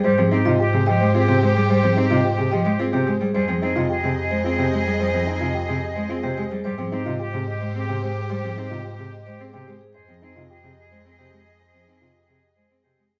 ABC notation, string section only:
X:1
M:3/4
L:1/16
Q:1/4=109
K:Ab
V:1 name="String section"
[Gc]12- | [Gc]8- [Gc]3 z | [Ae]12- | [Ae]8- [Ae]3 z |
[Gc]12- | [Gc]8- [Gc]3 z | [Ae]12- | [Ae]8- [Ae]3 z |]